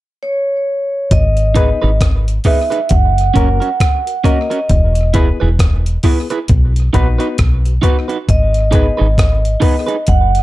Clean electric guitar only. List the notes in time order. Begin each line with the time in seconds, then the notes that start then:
1.54 D#4 G#4 B4
1.82 D#4 G#4 B4
2.45 D#4 G#4 B4
2.70 D#4 G#4 B4
3.34 C#4 F#4 A#4
3.60 C#4 F#4 A#4
4.24 C#4 F#4 A#4
4.50 C#4 F#4 A#4
5.14 E4 G#4 B4
5.40 E4 G#4 B4
6.04 E4 G#4 B4
6.30 E4 G#4 B4
6.93 D#4 F#4 B4
7.18 D#4 F#4 B4
7.82 D#4 F#4 B4
8.08 D#4 F#4 B4
8.71 D#4 G#4 B4
8.97 D#4 G#4 B4
9.60 D#4 G#4 B4
9.86 D#4 G#4 B4